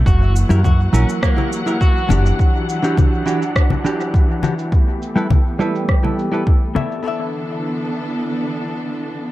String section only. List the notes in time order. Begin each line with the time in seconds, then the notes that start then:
0.06 E3 F#3 A#3 F#5
2.39 D4
4.72 A3 B3 G4
7.05 D3 E3 B3 D4 A4